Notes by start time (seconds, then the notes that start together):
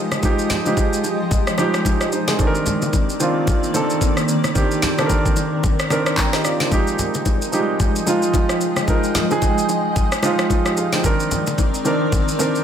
Already playing: F3 G3 G#3 D#4 G4 A#4 D#5
0.11 cross-stick, low bongo, shaker
0.22 F3 G#3 D#4 G4, kick, low conga, shaker
0.39 shaker
0.50 snare, low conga, shaker
0.65 F3 G#3 D#4 G4, low bongo, shaker
0.77 kick, high bongo, shaker
0.93 shaker
1.04 high bongo, shaker
1.31 kick, low conga, shaker
1.47 cross-stick, shaker
1.57 F3 G3 D#4 G4, cross-stick, low bongo, shaker
1.65 G#3
1.74 cross-stick, shaker
1.85 kick, high bongo, shaker
2.01 G4 D#5, cross-stick, shaker
2.12 D#4 C5, shaker
2.28 C4 G#4, snare, low bongo, shaker
2.38 D#3 A#3 C4 D4 A4 D5, kick, low conga, shaker
2.47 A#4
2.55 shaker
2.66 low conga, shaker
2.82 low bongo, shaker
2.93 kick, high bongo, shaker
3.09 shaker
3.20 D#3 C4 D4 F4, high bongo, shaker
3.47 kick, low conga, shaker
3.63 shaker
3.74 D#3 C4 D4 A4, low bongo, shaker
3.90 shaker
4.01 kick, high bongo, shaker
4.17 cross-stick, shaker
4.28 shaker
4.44 cross-stick, low bongo, shaker
4.55 D#3 C4 D4 G4 A#4, kick, low conga, shaker
4.71 shaker
4.82 snare, low conga, shaker
4.98 D#3 C4 D4 A4, cross-stick, low bongo, shaker
5.06 A#4, kick, high bongo, shaker
5.26 kick, shaker
5.36 high bongo, shaker
5.63 kick, low conga, shaker
5.80 cross-stick, shaker
5.90 D#3 C4 D4 A#4, cross-stick, low bongo, shaker
6.06 cross-stick, shaker
6.17 A#4 G5 A#5, kick, clap, high bongo, shaker
6.33 G4 D#5, cross-stick, snare, shaker
6.45 F4 D5, cross-stick, shaker
6.60 D#4 C5, snare, low bongo, shaker
6.71 F3 G#3 D#4 G4 D#5 G5, kick, low conga, shaker
6.87 shaker
6.99 low conga, shaker
7.14 low bongo, shaker
7.26 kick, high bongo, shaker
7.42 shaker
7.52 F3 G3 D#4 G4, high bongo, shaker
7.59 G#3
7.80 kick, low conga, shaker
7.96 shaker
8.06 F3 G#3 D#4 F4, low bongo, shaker
8.22 shaker
8.34 kick, high bongo, shaker
8.49 cross-stick, shaker
8.61 shaker
8.76 cross-stick, low bongo, shaker
8.87 F3 G#3 D#4 A#4, kick, low conga, shaker
9.04 shaker
9.15 snare, low conga, shaker
9.30 F3 G#3 D#4 G#4, low bongo, shaker
9.42 kick, high bongo, shaker
9.58 shaker
9.69 high bongo, shaker
9.96 kick, low conga, shaker
10.12 cross-stick, shaker
10.22 F3 G#3 D#4 F4, cross-stick, low bongo, shaker
10.39 cross-stick, shaker
10.50 kick, high bongo, shaker
10.66 G4 D#5, cross-stick, shaker
10.77 G#4 F5, shaker
10.93 D#4 C5, snare, low bongo, shaker
11.03 D#3 C4 D4 A#4 D5, kick, low conga, shaker
11.20 shaker
11.31 low conga, shaker
11.47 low bongo, shaker
11.58 kick, high bongo, shaker
11.74 shaker
11.85 D#3 C4 D4 A#4, high bongo, shaker
12.12 kick, low conga, shaker
12.28 shaker
12.39 D#3 C4 D4 A#4, low bongo, shaker
12.55 shaker